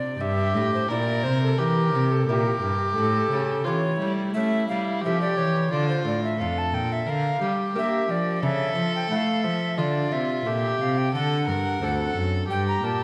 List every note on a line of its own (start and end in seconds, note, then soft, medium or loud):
0.00 0.17 C3 soft
0.00 0.19 C3 medium
0.00 0.14 D4 soft
0.00 0.18 D4 medium
0.00 0.15 F4 soft
0.00 0.22 D5 medium
0.19 0.56 G2 medium
0.19 0.52 G2 medium
0.19 0.91 G4 medium
0.19 0.73 E5 medium
0.54 0.89 A2 medium
0.54 0.87 A2 medium
0.74 0.89 C5 medium
0.89 1.26 A#2 medium
0.89 1.21 A#2 medium
0.89 1.55 A#3 soft
0.89 1.55 E4 medium
0.89 1.55 G4 medium
0.89 1.60 A#4 medium
0.89 1.25 D5 medium
1.23 1.57 C3 medium
1.23 1.56 C3 medium
1.23 1.41 C5 medium
1.42 1.60 A4 medium
1.58 1.95 E3 medium
1.58 1.90 E3 medium
1.58 2.24 A#3 soft
1.58 2.24 E4 soft
1.58 2.26 G4 medium
1.58 2.24 G4 medium
1.58 2.13 A#4 medium
1.93 2.28 C3 medium
1.93 2.25 C3 medium
2.11 2.30 A4 medium
2.27 2.62 A#2 medium
2.27 2.59 A#2 medium
2.27 2.93 A#3 soft
2.27 2.93 E4 soft
2.27 3.66 G4 medium
2.27 2.93 G4 soft
2.27 2.97 A#4 loud
2.62 2.93 G2 medium
2.62 2.96 G2 medium
2.95 3.30 A2 medium
2.95 3.28 A2 medium
2.95 3.67 A4 loud
3.31 3.64 C#3 medium
3.31 3.62 C#3 medium
3.65 3.99 E3 medium
3.65 3.97 E3 medium
3.65 4.31 A3 soft
3.65 4.31 C#4 soft
3.65 3.98 F4 medium
3.65 4.31 G4 medium
3.65 4.12 C#5 medium
3.99 4.33 G3 medium
3.99 4.32 G3 medium
3.99 5.03 E4 medium
4.34 4.68 A3 medium
4.34 4.66 A3 medium
4.34 5.00 C#4 soft
4.34 5.00 G4 medium
4.34 4.68 E5 loud
4.68 5.02 G3 medium
4.68 5.01 G3 medium
4.68 5.02 F5 medium
5.02 5.37 F3 medium
5.02 5.69 A3 soft
5.02 5.70 G4 medium
5.02 5.20 E5 loud
5.06 5.35 F3 medium
5.06 5.69 C#4 soft
5.06 5.69 G4 soft
5.21 5.39 D5 medium
5.37 5.68 E3 medium
5.37 5.71 E3 medium
5.37 5.73 C#5 medium
5.71 6.05 D3 medium
5.71 6.02 D3 medium
5.71 6.37 F4 medium
5.71 5.88 D5 medium
5.89 6.05 C5 medium
6.05 6.35 A2 medium
6.05 6.41 A2 medium
6.05 6.22 D5 medium
6.24 6.41 E5 medium
6.39 6.74 F2 medium
6.39 6.70 F2 medium
6.39 6.70 A3 soft
6.39 7.04 D4 medium
6.39 7.04 F4 medium
6.39 7.08 A4 medium
6.39 6.60 F5 medium
6.58 6.76 A5 medium
6.72 7.07 A#2 medium
6.72 7.04 A#2 medium
6.72 6.94 G5 medium
6.92 7.11 E5 medium
7.07 7.41 D3 medium
7.07 7.39 D3 soft
7.07 7.41 A#4 medium
7.07 7.53 F5 loud
7.42 7.72 G3 medium
7.42 7.75 G3 medium
7.42 8.41 G4 medium
7.75 8.39 A#3 medium
7.75 8.09 A#3 medium
7.75 8.39 D4 soft
7.75 8.39 G4 soft
7.75 8.12 E5 loud
8.09 8.39 F3 medium
8.09 8.44 F3 medium
8.09 8.43 D5 medium
8.43 8.73 C#3 medium
8.43 8.75 C#3 medium
8.43 9.79 A4 medium
8.43 8.93 E5 loud
8.75 9.06 F3 medium
8.75 9.10 F3 medium
8.96 9.10 G5 medium
9.10 9.46 A3 medium
9.10 9.41 A3 medium
9.10 9.75 E4 soft
9.10 9.75 A4 medium
9.10 9.17 F#5 medium
9.16 9.45 F5 medium
9.43 9.75 F3 medium
9.43 9.79 F3 medium
9.43 9.77 E5 loud
9.78 10.12 D3 medium
9.78 10.09 D3 medium
9.78 10.48 F4 medium
9.78 10.14 D5 medium
9.78 9.82 D#5 medium
10.12 10.43 C3 medium
10.12 10.46 C3 medium
10.12 10.83 E5 medium
10.46 10.76 A#2 soft
10.46 10.79 A#2 medium
10.46 10.77 A3 soft
10.46 11.10 F4 soft
10.46 11.14 G4 medium
10.46 11.10 A4 soft
10.80 11.11 C3 medium
10.80 11.13 C3 medium
10.80 10.99 F5 medium
10.98 11.14 G5 loud
11.14 11.49 D3 medium
11.14 11.45 D3 medium
11.14 11.47 A4 medium
11.14 12.18 F#5 loud
11.47 11.81 G2 medium
11.47 11.79 G2 medium
11.47 11.85 A#4 medium
11.81 12.15 D2 medium
11.81 12.12 D2 medium
11.81 12.45 C4 soft
11.81 12.46 D4 soft
11.81 12.46 A4 medium
11.81 12.48 A4 medium
12.16 12.49 F#2 medium
12.16 12.46 F#2 medium
12.49 12.82 G2 medium
12.49 12.80 G2 medium
12.49 13.04 G4 medium
12.49 12.66 G5 loud
12.68 12.86 A#5 medium
12.83 13.04 A#2 medium
12.83 13.04 A5 medium